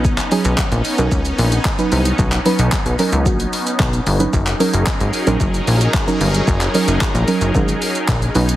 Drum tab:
HH |-xox-xox-xox-xox|-xox-xox-xox-xox|-xox-xox-xox-xox|-xox-xox-xox-xox|
SH |xxxxxxxxxxxxxxxx|xxxxxxxxxxxxxxxx|xxxxxxxxxxxxxxxx|xxxxxxxxxxxxxxxx|
CP |-x--x-------x---|-x--x-------x---|-x--x-------x---|-x--x-------x---|
BD |o---o---o---o---|o---o---o---o---|o---o---o---o---|o---o---o---o---|